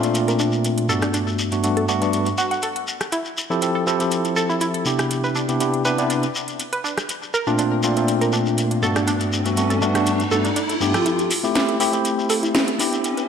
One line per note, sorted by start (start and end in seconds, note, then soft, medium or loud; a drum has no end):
0.02 0.86 A#2 medium
0.02 0.86 A3 medium
0.02 0.86 C4 medium
0.02 0.87 D4 medium
0.02 0.87 F4 medium
0.02 closed hi-hat soft
0.02 shekere soft
0.15 closed hi-hat medium
0.15 shekere medium
0.28 0.33 A#4 medium
0.28 closed hi-hat soft
0.28 shekere soft
0.39 0.46 D4 medium
0.39 shekere medium
0.52 shekere soft
0.64 closed hi-hat medium
0.64 shekere soft
0.78 closed hi-hat soft
0.88 1.48 G2 medium
0.88 1.49 A3 medium
0.88 1.49 B3 medium
0.88 1.49 D4 medium
0.88 1.49 F#4 medium
0.88 0.93 A4 loud
0.88 shekere medium
1.02 1.10 D4 medium
1.02 cross-stick medium
1.02 closed hi-hat soft
1.02 shekere soft
1.14 1.18 D4 medium
1.14 closed hi-hat medium
1.14 shekere soft
1.27 shekere soft
1.39 shekere medium
1.52 1.62 G2 medium
1.52 1.62 A3 medium
1.52 1.62 B3 medium
1.52 1.62 D4 medium
1.52 1.62 F#4 medium
1.52 closed hi-hat soft
1.52 shekere soft
1.63 1.85 G2 medium
1.63 1.85 A3 medium
1.63 1.85 B3 medium
1.63 1.85 D4 medium
1.63 1.85 F#4 medium
1.63 closed hi-hat medium
1.63 shekere medium
1.77 1.82 A4 medium
1.77 closed hi-hat soft
1.88 1.99 G2 medium
1.88 2.00 A3 medium
1.88 2.00 B3 medium
1.88 1.94 D4 medium
1.88 2.00 D4 medium
1.88 2.00 F#4 loud
1.88 shekere medium
2.01 2.27 G2 medium
2.01 2.27 A3 medium
2.01 2.27 B3 medium
2.01 2.28 D4 medium
2.01 2.28 F#4 medium
2.01 closed hi-hat soft
2.01 shekere soft
2.13 closed hi-hat medium
2.13 shekere soft
2.26 closed hi-hat soft
2.26 shekere soft
2.38 2.42 F#4 loud
2.38 shekere medium
2.51 2.56 F#5 medium
2.51 closed hi-hat soft
2.51 shekere soft
2.62 2.66 A4 medium
2.62 closed hi-hat medium
2.62 shekere medium
2.76 closed hi-hat soft
2.88 shekere medium
3.01 cross-stick medium
3.01 closed hi-hat soft
3.01 shekere soft
3.12 3.16 E4 medium
3.12 closed hi-hat medium
3.12 shekere soft
3.25 shekere soft
3.37 shekere medium
3.50 3.60 F3 medium
3.50 3.60 C4 medium
3.50 3.60 E4 medium
3.50 3.60 G4 medium
3.50 3.60 A4 loud
3.50 shekere soft
3.62 3.84 F3 medium
3.62 3.84 C4 medium
3.62 3.84 E4 medium
3.62 3.84 G4 medium
3.62 3.84 A4 medium
3.62 closed hi-hat medium
3.62 shekere soft
3.75 3.80 A4 medium
3.86 3.98 F3 medium
3.86 3.98 C4 medium
3.86 3.98 E4 medium
3.86 3.93 E4 medium
3.86 3.98 G4 medium
3.86 3.98 A4 loud
3.86 shekere medium
3.99 4.83 F3 medium
3.99 4.83 C4 medium
3.99 4.83 E4 medium
3.99 4.83 G4 medium
3.99 4.84 A4 medium
3.99 closed hi-hat soft
3.99 shekere soft
4.11 closed hi-hat medium
4.11 shekere soft
4.25 closed hi-hat soft
4.25 shekere soft
4.36 4.40 A4 loud
4.36 shekere medium
4.50 4.57 E4 medium
4.50 shekere soft
4.61 4.65 E4 medium
4.61 closed hi-hat medium
4.61 shekere soft
4.74 closed hi-hat soft
4.85 5.45 C3 medium
4.85 5.45 B3 medium
4.85 5.46 D4 medium
4.85 5.46 E4 medium
4.85 5.46 G4 medium
4.85 shekere medium
4.99 cross-stick medium
4.99 closed hi-hat soft
4.99 shekere soft
5.11 closed hi-hat medium
5.11 shekere soft
5.24 5.29 B4 medium
5.24 shekere soft
5.35 5.42 D4 medium
5.35 shekere medium
5.48 5.58 C3 medium
5.48 5.58 B3 medium
5.48 5.59 D4 medium
5.48 5.59 E4 medium
5.48 5.59 G4 medium
5.48 closed hi-hat soft
5.48 shekere soft
5.60 5.81 C3 medium
5.60 5.82 B3 medium
5.60 5.82 D4 medium
5.60 5.82 E4 medium
5.60 5.82 G4 medium
5.60 closed hi-hat medium
5.60 shekere soft
5.74 closed hi-hat soft
5.85 5.96 C3 medium
5.85 5.96 B3 medium
5.85 5.96 D4 medium
5.85 5.96 E4 medium
5.85 5.97 G4 loud
5.85 5.89 B4 medium
5.85 shekere medium
5.98 6.24 C3 medium
5.98 6.24 B3 medium
5.98 6.06 D4 medium
5.98 6.24 D4 medium
5.98 6.24 E4 medium
5.98 6.24 G4 medium
5.98 closed hi-hat soft
5.98 shekere soft
6.10 6.14 D4 medium
6.10 closed hi-hat medium
6.10 shekere soft
6.23 closed hi-hat soft
6.23 shekere soft
6.35 shekere medium
6.48 closed hi-hat soft
6.48 shekere soft
6.60 closed hi-hat medium
6.60 shekere soft
6.73 6.78 B4 medium
6.73 closed hi-hat soft
6.84 6.90 D4 medium
6.84 shekere medium
6.98 cross-stick medium
6.98 closed hi-hat soft
6.98 shekere soft
7.09 closed hi-hat medium
7.09 riser medium
7.09 shekere soft
7.23 shekere soft
7.34 7.37 A#4 loud
7.34 shekere medium
7.47 7.57 A#2 medium
7.47 7.57 A3 medium
7.47 7.57 C4 medium
7.47 7.55 D4 medium
7.47 7.57 D4 medium
7.47 7.57 F4 loud
7.47 shekere soft
7.58 7.81 A#2 medium
7.58 7.81 A3 medium
7.58 7.81 C4 medium
7.58 7.62 D4 medium
7.58 7.81 D4 medium
7.58 7.81 F4 medium
7.58 closed hi-hat medium
7.58 shekere soft
7.83 7.95 A#2 medium
7.83 7.95 A3 medium
7.83 7.95 C4 medium
7.83 7.95 D4 medium
7.83 7.95 F4 loud
7.83 shekere medium
7.96 8.79 A#2 medium
7.96 8.80 A3 medium
7.96 8.80 C4 medium
7.96 8.80 D4 medium
7.96 8.80 F4 medium
7.96 closed hi-hat medium
7.96 shekere soft
8.08 closed hi-hat medium
8.08 shekere soft
8.21 8.27 A#4 medium
8.21 closed hi-hat soft
8.21 shekere soft
8.33 8.39 D4 medium
8.33 shekere medium
8.46 shekere soft
8.58 closed hi-hat medium
8.58 shekere soft
8.71 closed hi-hat soft
8.82 9.42 G2 medium
8.82 9.42 A3 medium
8.82 9.42 B3 medium
8.82 9.43 D4 medium
8.82 9.43 F#4 medium
8.82 8.86 A4 loud
8.82 shekere medium
8.96 9.04 D4 medium
8.96 cross-stick medium
8.96 closed hi-hat soft
8.96 shekere soft
9.07 9.11 D4 medium
9.07 closed hi-hat medium
9.07 shekere soft
9.20 closed hi-hat soft
9.20 shekere soft
9.33 shekere medium
9.45 9.55 G2 medium
9.45 9.55 A3 medium
9.45 9.55 B3 medium
9.45 9.55 D4 medium
9.45 9.56 F#4 medium
9.45 closed hi-hat soft
9.45 shekere soft
9.57 9.78 G2 medium
9.57 9.78 A3 medium
9.57 9.78 B3 medium
9.57 9.79 D4 medium
9.57 9.79 F#4 medium
9.57 closed hi-hat medium
9.57 shekere medium
9.70 9.76 A4 medium
9.70 closed hi-hat soft
9.70 shekere soft
9.81 9.93 G2 medium
9.81 9.93 A3 medium
9.81 9.93 B3 medium
9.81 9.88 D4 medium
9.81 9.93 D4 medium
9.81 9.93 F#4 loud
9.81 shekere medium
9.95 10.21 G2 medium
9.95 10.21 A3 medium
9.95 10.21 B3 medium
9.95 10.21 D4 medium
9.95 10.21 F#4 medium
9.95 cross-stick medium
9.95 closed hi-hat medium
9.95 shekere soft
10.06 closed hi-hat medium
10.06 shekere soft
10.20 closed hi-hat soft
10.20 shekere soft
10.31 10.48 G2 medium
10.31 10.48 A3 medium
10.31 10.48 B3 medium
10.31 10.48 D4 medium
10.31 10.48 F#4 loud
10.31 10.35 A4 loud
10.31 shekere medium
10.45 10.53 D4 medium
10.45 closed hi-hat soft
10.45 shekere soft
10.56 10.60 D4 medium
10.56 closed hi-hat medium
10.56 shekere soft
10.69 closed hi-hat medium
10.69 shekere soft
10.81 10.92 G2 medium
10.81 10.92 A3 medium
10.81 10.92 B3 medium
10.81 10.92 D4 medium
10.81 10.93 G4 loud
10.81 shekere medium
10.94 11.30 F3 medium
10.94 11.31 C4 medium
10.94 11.31 E4 medium
10.94 11.31 G4 medium
10.94 11.31 A4 medium
10.94 cross-stick medium
10.94 closed hi-hat soft
10.94 shekere soft
11.06 11.09 E4 medium
11.06 closed hi-hat medium
11.06 riser medium
11.06 shekere soft
11.19 closed hi-hat soft
11.19 shekere soft
11.31 open hi-hat loud
11.31 shekere medium
11.43 11.53 A3 medium
11.43 11.54 C4 medium
11.43 11.54 E4 medium
11.43 11.54 G4 loud
11.43 shekere soft
11.55 11.77 A3 medium
11.55 11.77 C4 medium
11.55 11.77 E4 medium
11.55 11.78 G4 medium
11.55 snare loud
11.55 closed hi-hat medium
11.55 shekere medium
11.69 11.74 A4 medium
11.69 closed hi-hat soft
11.80 11.91 A3 medium
11.80 11.91 C4 medium
11.80 11.86 E4 medium
11.80 11.91 E4 medium
11.80 11.92 G4 loud
11.80 open hi-hat loud
11.80 shekere medium
11.93 12.76 A3 medium
11.93 12.76 C4 medium
11.93 12.77 E4 medium
11.93 12.77 G4 medium
11.93 closed hi-hat medium
11.93 shekere soft
12.05 closed hi-hat medium
12.05 shekere medium
12.19 shekere soft
12.30 12.33 A4 loud
12.30 open hi-hat loud
12.30 shekere medium
12.43 12.51 E4 medium
12.43 closed hi-hat soft
12.43 shekere soft
12.55 12.58 E4 medium
12.55 snare loud
12.55 closed hi-hat medium
12.55 shekere soft
12.68 closed hi-hat soft
12.78 13.28 B3 medium
12.78 13.28 D4 medium
12.78 13.28 E4 medium
12.78 13.28 G4 medium
12.78 open hi-hat loud
12.78 shekere medium
12.93 closed hi-hat soft
12.93 shekere soft
13.04 closed hi-hat medium
13.04 shekere medium
13.17 13.23 B4 medium
13.17 closed hi-hat soft
13.17 shekere soft